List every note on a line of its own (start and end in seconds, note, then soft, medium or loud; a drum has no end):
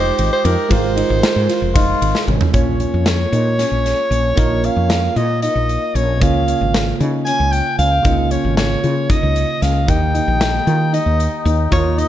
0.00 0.10 F1 medium
0.00 0.67 G#3 medium
0.00 0.28 D#4 medium
0.00 0.67 F4 medium
0.00 1.48 G4 medium
0.00 0.29 C5 loud
0.00 0.68 C5 medium
0.19 0.29 G#1 medium
0.19 ride medium
0.33 0.47 C5 medium
0.44 0.55 F2 loud
0.44 0.62 D#4 medium
0.44 0.73 A#4 medium
0.44 ride medium
0.69 1.02 G#1 loud
0.69 2.50 G#3 medium
0.69 0.88 F4 loud
0.69 2.50 F4 medium
0.69 2.51 A#4 medium
0.69 2.02 C5 medium
0.69 kick loud
0.69 ride medium
0.96 1.32 D#4 medium
0.96 ride medium
1.10 1.21 G#1 loud
1.23 snare loud
1.23 ride medium
1.36 1.47 G#2 medium
1.49 1.67 F4 medium
1.49 snare soft
1.49 ride medium
1.62 1.93 F1 medium
1.75 2.11 D#4 medium
1.75 2.24 F4 loud
1.75 kick loud
1.75 ride medium
2.02 2.12 G#1 medium
2.02 ride medium
2.15 snare medium
2.28 2.38 G#1 loud
2.28 2.46 C#4 medium
2.28 mid tom medium
2.41 floor tom loud
2.52 2.85 A#1 medium
2.52 4.33 A#3 medium
2.52 2.72 C#4 medium
2.52 4.34 F4 medium
2.52 4.66 C#5 medium
2.52 4.34 C#5 medium
2.52 kick loud
2.52 closed hi-hat medium
2.80 3.16 C#4 medium
2.80 closed hi-hat medium
2.94 3.25 F2 medium
3.06 snare medium
3.06 closed hi-hat medium
3.32 3.63 A#2 medium
3.32 3.51 D#4 medium
3.32 closed hi-hat medium
3.59 3.94 C#4 medium
3.59 snare soft
3.59 closed hi-hat medium
3.72 3.92 A#1 medium
3.86 snare soft
3.86 closed hi-hat medium
4.11 4.32 A#1 medium
4.11 4.29 C#4 medium
4.11 closed hi-hat medium
4.36 4.69 A#1 medium
4.36 6.17 A#3 medium
4.36 4.55 D#4 medium
4.36 6.17 F4 medium
4.36 6.18 A#4 medium
4.36 kick loud
4.36 closed hi-hat medium
4.64 4.99 C#4 medium
4.64 5.19 F5 loud
4.64 closed hi-hat medium
4.76 5.08 F2 medium
4.90 snare medium
4.90 closed hi-hat medium
5.16 5.47 A#2 loud
5.16 5.34 F4 medium
5.16 5.42 D#5 medium
5.16 closed hi-hat soft
5.42 5.78 D#4 medium
5.42 5.97 D#5 medium
5.42 closed hi-hat medium
5.55 5.76 A#1 medium
5.69 closed hi-hat medium
5.95 6.21 A#1 loud
5.95 6.13 C#4 medium
5.95 6.23 C#5 medium
5.95 closed hi-hat medium
6.19 6.52 C#2 medium
6.19 8.00 C#3 medium
6.19 8.01 A#3 medium
6.19 6.39 C#4 medium
6.19 8.02 F4 medium
6.19 7.00 F5 medium
6.19 kick loud
6.19 closed hi-hat medium
6.48 6.83 C#4 medium
6.48 closed hi-hat medium
6.61 6.92 G#1 medium
6.74 snare loud
6.74 closed hi-hat medium
7.00 7.31 C#3 loud
7.00 7.18 D#4 medium
7.00 closed hi-hat medium
7.25 7.62 C#4 medium
7.25 7.54 G#5 loud
7.25 closed hi-hat medium
7.40 7.60 C#2 medium
7.52 7.78 G5 medium
7.52 closed hi-hat medium
7.79 7.99 C#2 medium
7.79 7.96 C#4 medium
7.79 8.33 F5 loud
7.79 closed hi-hat medium
8.03 8.36 C#2 medium
8.03 9.83 C#3 medium
8.03 9.84 A#3 medium
8.03 8.23 D#4 medium
8.03 9.85 F4 medium
8.03 kick loud
8.03 closed hi-hat medium
8.31 8.67 C#4 medium
8.31 8.56 C#5 medium
8.31 closed hi-hat medium
8.45 8.75 G#1 medium
8.57 9.12 C#5 medium
8.57 snare medium
8.57 closed hi-hat medium
8.84 9.14 C#3 medium
8.84 9.01 F4 medium
8.84 closed hi-hat soft
9.09 9.45 D#4 medium
9.09 9.64 D#5 medium
9.09 kick loud
9.09 closed hi-hat medium
9.23 9.43 C#2 medium
9.36 closed hi-hat medium
9.62 9.88 C#2 medium
9.62 9.80 C#4 medium
9.62 9.91 F5 medium
9.62 snare soft
9.62 closed hi-hat medium
9.87 10.19 D#2 medium
9.87 11.67 D#3 medium
9.87 11.68 A#3 medium
9.87 10.06 D#4 medium
9.87 12.08 D#4 medium
9.87 11.68 G4 medium
9.87 10.94 G5 medium
9.87 kick loud
9.87 closed hi-hat medium
10.14 10.50 D#4 medium
10.14 closed hi-hat medium
10.28 10.59 A#1 medium
10.41 snare loud
10.41 closed hi-hat medium
10.67 10.98 D#3 loud
10.67 10.85 F4 medium
10.67 closed hi-hat soft
10.93 11.28 D#4 medium
10.93 11.42 D#5 medium
10.93 closed hi-hat medium
11.06 11.27 D#2 medium
11.20 closed hi-hat medium
11.45 11.66 D#2 loud
11.45 11.63 D#4 medium
11.45 closed hi-hat medium
11.71 12.03 D#2 medium
11.71 12.08 D#3 medium
11.71 12.08 A#3 medium
11.71 11.89 F4 loud
11.71 12.08 F4 medium
11.71 12.00 C#5 loud
11.71 kick loud
11.71 closed hi-hat medium
11.98 12.08 D#4 medium
11.98 12.08 D#5 medium
11.98 closed hi-hat medium